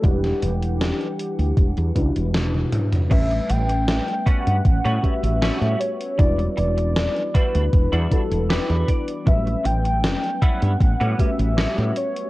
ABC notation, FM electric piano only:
X:1
M:4/4
L:1/16
Q:1/4=78
K:Amix
V:1 name="FM electric piano"
[G,DEBf]8- [G,DEBf]2 [G,DEFB] z4 z | [G,A,CBe]8- [G,A,CBe]2 [A,CFGB] z4 z | [G,DEFB]8- [G,DEFB]2 [G,DEFB] z4 z | [F,G,A,CB]8- [F,G,A,CB]2 [A,CFGB] z4 z |]